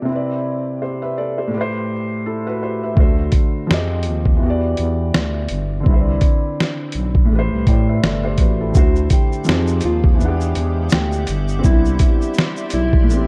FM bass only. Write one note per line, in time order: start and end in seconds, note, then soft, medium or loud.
2.97 3.30 D2 medium
3.71 4.08 F2 loud
4.06 4.39 D#2 medium
4.43 4.75 E2 medium
4.79 5.12 E2 loud
5.15 5.48 D2 medium
5.51 5.84 G1 medium
5.87 6.20 C2 loud
6.95 7.28 B1 medium
7.31 7.50 A1 medium
7.52 7.66 C2 medium
7.68 8.01 A2 medium
8.04 8.37 G1 medium
8.39 8.72 A1 medium
8.76 9.09 D2 loud
9.49 9.82 F2 loud
9.85 10.18 D#2 medium
10.21 10.54 E2 loud
10.57 10.90 E2 medium
10.93 11.26 D2 medium
11.29 11.62 G1 medium
11.65 11.98 C2 loud
12.74 13.11 B1 medium
13.10 13.27 A1 loud